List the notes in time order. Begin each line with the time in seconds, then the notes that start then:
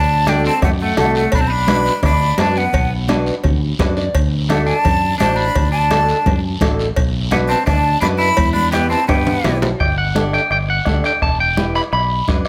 Already playing: D2 D4 A5
0.26 D4 F#4 A4 G5, bombo rim, cowbell, high conga, short guiro
0.44 C4 A5, short guiro
0.62 F#2 A3 F#5, bombo low, bombo rim, cowbell, low conga, long guiro
0.81 A3 F#5
0.97 C2 A3 D4 F#4 A4 F#5, bombo rim, cowbell, high conga, low conga, short guiro
1.15 A3 F#5, short guiro
1.32 B1 D4 B5, bombo low, cowbell, long guiro
1.39 C4 A5
1.47 D4 B5
1.67 D4 F#4 B4, bombo rim, cowbell, high conga, short guiro
1.86 short guiro
2.03 D2 D4 B5, bombo low, bombo rim, cowbell, low conga, long guiro
2.38 F#2 D4 F#4 B4 A5, bombo rim, cowbell, high conga, low timbale, short guiro
2.56 B3 F#5, short guiro
2.73 B1, bombo low, cowbell, low conga, long guiro
3.08 D4 F#4 B4, bombo rim, cowbell, high conga, short guiro
3.27 short guiro
3.43 D2, bombo low, cowbell, low conga, long guiro
3.79 F#2 D4 F#4 B4, bombo low, bombo rim, cowbell, high conga, low conga, low timbale, short guiro
3.97 D5, short guiro
4.14 D2, bombo low, cowbell, long guiro
4.49 A3 D4 F#4 A4 F#5, bombo rim, cowbell, high conga, short guiro
4.66 D4 A5, short guiro
4.84 F#2, bombo low, cowbell, low conga, long guiro
5.18 A1 D4 F#4 C5 A5, bombo rim, cowbell, high conga, short guiro
5.36 D4 B5, short guiro
5.55 D2, bombo low, cowbell, low conga, long guiro
5.72 D4 A5
5.91 D4 F#4 A4, bombo rim, cowbell, high conga, short guiro
6.09 short guiro
6.26 F#2, bombo low, cowbell, high conga, low conga, long guiro
6.61 A1 D4 F#4 A4, bombo low, bombo rim, cowbell, high conga, low conga, short guiro
6.79 short guiro
6.96 B1, bombo low, cowbell, long guiro
7.31 B3 D4 F#4 B4 F#5, bombo rim, cowbell, high conga, short guiro
7.49 C4 A5, short guiro
7.66 D2 D4 A5, bombo low, bombo rim, cowbell, high conga, low conga, long guiro
8.01 F#2 D4 F#4 B4 B5, bombo rim, cowbell, high conga, short guiro
8.18 E4 B5, short guiro
8.37 E2, bombo low, cowbell, high conga, long guiro
8.53 D4 B5, high conga
8.72 B3 E4 G4 B4 G5, bombo rim, cowbell, short guiro
8.90 C4 A5, short guiro
9.08 G2 B3 G5, bombo low, bombo rim, cowbell, low conga, high timbale, long guiro
9.27 low conga, high timbale
9.44 B1 E4 G4 B4, bombo rim, cowbell, low conga, low timbale, short guiro
9.62 low conga, low timbale, short guiro
9.80 G1 G5, bombo low, bombo rim, high conga, long guiro
9.98 F#5
10.15 D4 G4 A4, bombo rim, high conga, short guiro
10.33 G5, bombo rim, short guiro
10.50 G1 G5, bombo rim, high conga, long guiro
10.70 F#5
10.85 D2 D4 G4 A4, bombo low, bombo rim, high conga, short guiro
11.04 G5, bombo rim, short guiro
11.22 E1 A5, bombo low, bombo rim, high conga, long guiro
11.40 G5
11.57 E4 G4 B4, bombo rim, high conga, short guiro
11.75 B5, bombo rim, short guiro
11.93 B1 B5, bombo rim, high conga, long guiro
12.28 F#2 D4 F#4 B4, bombo low, bombo rim, high conga, short guiro
12.45 bombo rim, short guiro